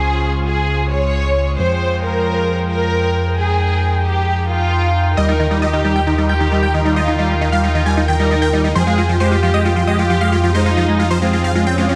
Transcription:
Already playing: analog synth bass C#2, string section G#3 C#4 F4, violin section G#4
0.47 violin section G#4
0.92 violin section C#5
1.59 analog synth bass F2, string section F4 G5, violin section C5
2.04 violin section A#4
2.71 violin section A#4
3.38 string section D#4, violin section G#4
4.05 violin section G4
4.50 violin section F4
5.17 analog synth bass D#2, string section D#3 F4 A#4, acid bass G3, violin section A#4, supersaw synth D#5, synth pluck D#6
5.28 acid bass G3, supersaw synth D#4, synth pluck D#5
5.40 acid bass D#3, supersaw synth D#4, synth pluck D#5
5.51 acid bass G3, supersaw synth D#4, synth pluck D#5
5.62 acid bass G3, violin section G4, supersaw synth D#5, synth pluck D#6
5.73 acid bass D#3, supersaw synth D#4, synth pluck D#5
5.84 acid bass G3, supersaw synth D#4, synth pluck D#5
5.96 acid bass G3, supersaw synth G5, synth pluck G6
6.07 acid bass D#3, supersaw synth D#4, synth pluck D#5
6.18 acid bass G3, supersaw synth D#4, synth pluck D#5
6.29 acid bass G3, violin section G4, supersaw synth G5, synth pluck G6
6.40 acid bass D#3, supersaw synth D#4, synth pluck D#5
6.52 acid bass G3, supersaw synth D#4, synth pluck D#5
6.63 acid bass G3, supersaw synth G5, synth pluck G6
6.74 acid bass D#3, supersaw synth D#4, synth pluck D#5
6.85 acid bass G3, supersaw synth D#4, synth pluck D#5
6.96 acid bass G3, violin section F4, supersaw synth D#5, synth pluck D#6
7.07 acid bass D#3, supersaw synth D#4, synth pluck D#5
7.19 acid bass G3, supersaw synth D#4, synth pluck D#5
7.30 acid bass G3
7.41 acid bass D#3, supersaw synth D#4, synth pluck D#5
7.52 acid bass G3, supersaw synth F5, synth pluck F6
7.63 acid bass G3, supersaw synth D#4, violin section F4, synth pluck D#5
7.75 acid bass D#3, supersaw synth D#4, synth pluck D#5
7.86 acid bass G3, supersaw synth G#5, synth pluck G#6
7.97 acid bass G3, supersaw synth D#4, synth pluck D#5
8.08 acid bass D#3, violin section A#4, supersaw synth G5, synth pluck G6
8.19 acid bass G3, supersaw synth D#4, synth pluck D#5
8.31 acid bass G3, supersaw synth D#4, synth pluck D#5
8.42 acid bass D#3, supersaw synth G5, synth pluck G6
8.53 acid bass G3, supersaw synth D#4, synth pluck D#5
8.64 acid bass G3, supersaw synth D#4, synth pluck D#5
8.75 analog synth bass F2, acid bass F3, string section G#3 F4 G5, violin section G#4, supersaw synth C5, synth pluck C6
8.87 acid bass G#3, supersaw synth F4, synth pluck F5
8.98 acid bass G#3, supersaw synth F4, synth pluck F5
9.09 acid bass F3, supersaw synth F4, synth pluck F5
9.20 acid bass G#3, violin section G4, supersaw synth C5, synth pluck C6
9.31 acid bass G#3, supersaw synth F4, synth pluck F5
9.43 acid bass F3, supersaw synth F4, synth pluck F5
9.54 acid bass G#3, supersaw synth D#5, synth pluck D#6
9.65 acid bass G#3, supersaw synth F4, synth pluck F5
9.76 acid bass F3, supersaw synth F4, synth pluck F5
9.87 acid bass G#3, violin section G4, supersaw synth D#5, synth pluck D#6
9.99 acid bass G#3, supersaw synth F4, synth pluck F5
10.10 acid bass F3, supersaw synth F4, synth pluck F5
10.21 acid bass G#3, supersaw synth F5, synth pluck F6
10.32 acid bass G#3, supersaw synth F4, synth pluck F5
10.43 acid bass F3, supersaw synth F4, synth pluck F5
10.54 acid bass G#3, violin section D#4, string section G#4, supersaw synth C5, synth pluck C6
10.66 acid bass G#3, supersaw synth F4, synth pluck F5
10.77 acid bass F3, supersaw synth F4, synth pluck F5
10.88 acid bass G#3
10.99 acid bass G#3, supersaw synth F4, synth pluck F5
11.11 acid bass F3, supersaw synth C5, synth pluck C6
11.22 acid bass G#3, violin section C4, supersaw synth F4, synth pluck F5
11.33 acid bass G#3, supersaw synth F4, synth pluck F5
11.44 acid bass F3, supersaw synth F5, synth pluck F6, swell
11.55 acid bass G#3, supersaw synth F4, synth pluck F5
11.66 violin section C4, acid bass C4, supersaw synth G5, synth pluck G6
11.78 acid bass G#3, supersaw synth F4, synth pluck F5
11.89 acid bass F3, supersaw synth F4, synth pluck F5

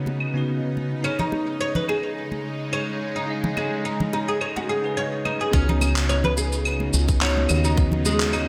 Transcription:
Already playing: tine electric piano C#3 B3 C#4 D#4 F#4 C#5 D#5, synth drone C#3 B3 D#4
0.06 high bongo, high conga
0.20 claves
0.33 tine electric piano C#3 B3 C#4 D#4 F#4
0.38 tine electric piano B4
0.77 high conga
1.03 synth drone C#3 G#3, oud C#4, tine electric piano D#4 G#4, claves
1.07 tine electric piano C#5
1.19 oud D#4, high bongo, low conga
1.32 high bongo, high conga
1.61 oud C#5
1.75 oud B4, low conga
1.88 oud G#4, high bongo, claves
2.32 high conga
2.72 tine electric piano D#4 G#4 C#5, oud C#5, claves
3.16 oud D#4
3.26 tine electric piano D#4 G#4 D#5
3.44 high bongo, high conga, low conga
3.57 oud G#3, high bongo, high conga, claves
3.85 oud D#4
4.00 low conga
4.13 oud D#4, high bongo
4.28 oud G#4
4.41 oud C#5, claves
4.56 oud F#4, high bongo, high conga
4.69 oud G#4
4.82 tine electric piano D#4 G#4 B4
4.97 oud C#5
5.25 oud D#4, high conga, claves
5.41 oud G#4
5.51 fretless electric bass C#2, synth drone C#3 B3 D#4, tine electric piano B3 C#4 D#4 F#4 C#5, oud C#4, kick, cabasa
5.69 oud D#4, high bongo, high conga, low conga
5.81 high bongo, high conga, cabasa, claves
5.96 clap, cabasa
6.09 oud C#5, cabasa
6.24 oud B4, low conga
6.37 oud G#4, high bongo, cabasa
6.52 cabasa
6.65 cabasa, claves
6.80 high conga
6.93 fretless electric bass C#2, cabasa
7.08 kick, cabasa
7.21 tine electric piano B3 C#4 D#4 F#4 C#5, oud C#5, clap, cabasa
7.37 high conga
7.49 fretless electric bass D#2, cabasa, claves
7.64 oud D#4, cabasa
7.76 tine electric piano B3 C#4 D#4 F#4, synth drone C#4, kick, cabasa
7.80 tine electric piano D#5
7.92 high bongo, high conga, low conga
8.05 oud G#3, high bongo, high conga, cabasa
8.20 clap, cabasa
8.33 oud D#4, cabasa, claves

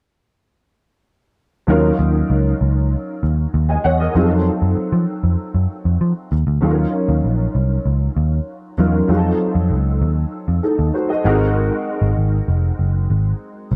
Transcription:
1.67 picked electric bass D#2, grand piano F#3 C#4 D#4 F4 A#4
1.99 picked electric bass D#2
2.30 picked electric bass C#2
2.61 picked electric bass C#2
3.23 picked electric bass D#2
3.54 picked electric bass D#2
3.69 grand piano D#5 G#5
3.84 picked electric bass E2, grand piano C#5 F#5
4.00 grand piano A#4 D#5
4.14 picked electric bass F2, grand piano F#3 C4 D#4 F4 G#4
4.23 grand piano A4
4.62 picked electric bass F#2
4.77 muted picked electric bass stroke
4.92 picked electric bass F3
5.24 picked electric bass F2
5.54 picked electric bass F#2
5.85 picked electric bass F2
6.01 picked electric bass F3
6.32 picked electric bass D#2
6.47 picked electric bass D2
6.61 picked electric bass D#2, grand piano F#3 C#4 D#4 F4 A4
6.70 grand piano A#4
7.09 picked electric bass D#2
7.24 picked electric bass A#1
7.55 picked electric bass C2
7.85 picked electric bass C#2
8.17 picked electric bass D#2
8.78 picked electric bass E2, grand piano F#3 C#4 D#4 F4 A#4
9.08 picked electric bass F2, grand piano F#3 C4 D#4 F4 G#4
9.17 grand piano A4
9.55 picked electric bass F2
9.70 picked electric bass C#2
10.02 picked electric bass D#2
10.48 picked electric bass F2
10.63 grand piano D#4 A4
10.79 picked electric bass D#2
10.94 grand piano F#4 C5
11.09 grand piano A4 D#5
11.23 picked electric bass G#1, grand piano G#3 C4 D#4 F#4 A#4
12.02 picked electric bass G#1
12.17 picked electric bass G#1
12.48 picked electric bass F1
12.79 picked electric bass F#1
13.10 picked electric bass G#1
13.72 picked electric bass C2

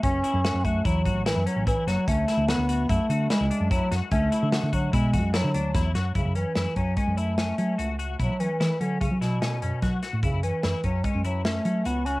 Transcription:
0.03 fingered electric bass F#1, bass clarinet C#4, clean electric guitar C#4, kick, closed hi-hat
0.24 clean electric guitar E4, closed hi-hat
0.34 fingered electric bass F#2
0.44 clean electric guitar F#4, snare, closed hi-hat
0.54 fingered electric bass F#2
0.65 bass clarinet A3, clean electric guitar F#4, kick, closed hi-hat
0.85 fingered electric bass E2, bass clarinet F#3, clean electric guitar E4, kick, closed hi-hat
1.06 fingered electric bass A1, clean electric guitar F#4, kick, closed hi-hat
1.26 bass clarinet E3, clean electric guitar E4, snare, closed hi-hat
1.36 fingered electric bass F#2
1.46 bass clarinet F#3, clean electric guitar C#4, closed hi-hat
1.56 fingered electric bass A1
1.67 bass clarinet E3, clean electric guitar E4, kick, closed hi-hat
1.87 fingered electric bass F#1, bass clarinet F#3, clean electric guitar F#4, snare, closed hi-hat
2.08 fingered electric bass D2, bass clarinet A3, clean electric guitar C#4, kick, closed hi-hat
2.28 clean electric guitar E4, snare, closed hi-hat
2.37 fingered electric bass D2
2.49 bass clarinet B3, clean electric guitar F#4, snare, closed hi-hat
2.58 fingered electric bass D2
2.69 clean electric guitar F#4, closed hi-hat
2.89 fingered electric bass F#2, bass clarinet A3, clean electric guitar E4, kick, closed hi-hat
3.09 fingered electric bass D3, clean electric guitar F#4, closed hi-hat
3.30 bass clarinet G#3, clean electric guitar E4, snare, closed hi-hat
3.41 fingered electric bass C#2
3.50 clean electric guitar D4, closed hi-hat
3.60 fingered electric bass F#2
3.71 bass clarinet F#3, clean electric guitar E4, kick, closed hi-hat
3.91 fingered electric bass F#2, clean electric guitar F#4, snare, closed hi-hat
4.11 fingered electric bass D2, bass clarinet A3, clean electric guitar C#4, kick, closed hi-hat
4.32 clean electric guitar E4, closed hi-hat
4.43 fingered electric bass D3
4.52 clean electric guitar F#4, snare, closed hi-hat
4.63 fingered electric bass D3
4.73 bass clarinet F#3, clean electric guitar F#4, kick, closed hi-hat
4.93 fingered electric bass B2, bass clarinet G#3, clean electric guitar E4, kick, closed hi-hat
5.13 fingered electric bass F#2, clean electric guitar F#4, kick, closed hi-hat
5.34 bass clarinet F#3, clean electric guitar E4, snare, closed hi-hat
5.44 fingered electric bass D3
5.54 fingered electric bass D2, clean electric guitar D4, closed hi-hat
5.74 fingered electric bass E2, clean electric guitar E4, kick, snare, closed hi-hat
5.95 fingered electric bass F#2, clean electric guitar F#4, snare, closed hi-hat
6.15 fingered electric bass F#2, bass clarinet C#3, clean electric guitar E4, kick, closed hi-hat
6.25 fingered electric bass F#2
6.35 bass clarinet E3, clean electric guitar C#4, closed hi-hat
6.55 fingered electric bass F#2, clean electric guitar E4, snare, closed hi-hat
6.76 fingered electric bass F#2, bass clarinet F#3, clean electric guitar C#4, kick, closed hi-hat
6.97 bass clarinet G#3, clean electric guitar C#4, kick, closed hi-hat
7.07 fingered electric bass F#2
7.17 bass clarinet A3, clean electric guitar E4, closed hi-hat
7.38 clean electric guitar C#4, snare, closed hi-hat
7.58 fingered electric bass F#3, clean electric guitar C#4, closed hi-hat
7.78 fingered electric bass C#2, clean electric guitar F#4, closed hi-hat
7.99 clean electric guitar F#4, closed hi-hat
8.20 fingered electric bass B2, bass clarinet F#3, clean electric guitar E4, kick, closed hi-hat
8.30 fingered electric bass F#3
8.40 bass clarinet E3, clean electric guitar C#4, closed hi-hat
8.60 fingered electric bass E3, clean electric guitar E4, snare, closed hi-hat
8.81 bass clarinet D3, fingered electric bass F#3, clean electric guitar C#4, closed hi-hat
9.01 bass clarinet C#3, clean electric guitar C#4, kick, closed hi-hat
9.11 fingered electric bass F#3
9.21 bass clarinet B2, clean electric guitar E4, snare, closed hi-hat
9.41 fingered electric bass B2, clean electric guitar C#4, snare, closed hi-hat
9.62 fingered electric bass F#2, clean electric guitar C#4, closed hi-hat
9.82 fingered electric bass F#3, clean electric guitar F#4, kick, snare, closed hi-hat
10.03 clean electric guitar F#4, snare, closed hi-hat
10.13 fingered electric bass A2
10.23 fingered electric bass F#2, bass clarinet C#3, clean electric guitar E4, kick, closed hi-hat
10.34 fingered electric bass F#2
10.43 bass clarinet E3, clean electric guitar C#4, closed hi-hat
10.64 fingered electric bass F#2, clean electric guitar E4, snare, closed hi-hat
10.84 fingered electric bass F#2, bass clarinet F#3, clean electric guitar C#4, kick, closed hi-hat
11.04 bass clarinet G#3, clean electric guitar C#4, kick, closed hi-hat
11.15 fingered electric bass F#2
11.25 bass clarinet F#3, clean electric guitar E4, closed hi-hat
11.45 bass clarinet A3, clean electric guitar C#4, snare, closed hi-hat
11.65 fingered electric bass F#3, clean electric guitar C#4, closed hi-hat
11.85 fingered electric bass C#2, bass clarinet B3, clean electric guitar F#4, closed hi-hat
12.06 bass clarinet C#4, clean electric guitar F#4, closed hi-hat

